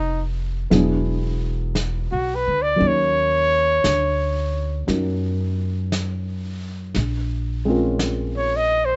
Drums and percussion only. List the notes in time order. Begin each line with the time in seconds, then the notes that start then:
0.71 brush sweep, snare
1.75 brush sweep, snare, hi-hat pedal
2.79 brush sweep
3.84 brush sweep, snare, hi-hat pedal
4.88 brush sweep, snare
5.92 brush sweep, snare, hi-hat pedal
6.95 brush sweep, snare
7.99 brush sweep, snare, hi-hat pedal